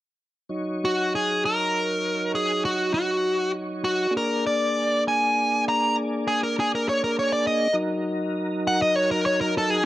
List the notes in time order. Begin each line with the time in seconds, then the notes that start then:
0.49 F#3 D#4 C#5
0.85 F#4
1.15 G#4
1.45 A#4
2.35 G#4
2.65 F#4
2.94 F#4
3.84 F#4
4.10 A#3 D4 G#4 D5
4.17 A#4
4.47 D5
5.08 G#5
5.69 A#5
6.28 G#4
6.43 A#4
6.60 G#4
6.75 A#4
6.89 C#5
7.04 A#4
7.19 C#5
7.32 D5
7.47 D#5
7.73 F#3 D#4 A#4
8.67 F#5
8.82 D#5
8.96 C#5
9.11 A#4
9.26 C#5
9.41 A#4
9.58 A4
9.70 G#4